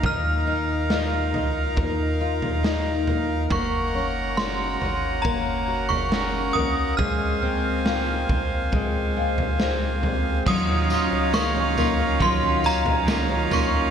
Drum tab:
CC |----------------|----------------|----------------|x---------------|
TB |----------------|----------------|----------------|x-x-x-x---x-x-x-|
SD |----o-------o---|----o-------o---|----o-------o---|----o-------o---|
FT |o-----o-o--o--o-|o-----o-o--o--o-|o-----o-o--o--o-|o-----o-o--o--o-|
BD |o-------o-------|o-------o-------|o-----o-o-------|o-------o-------|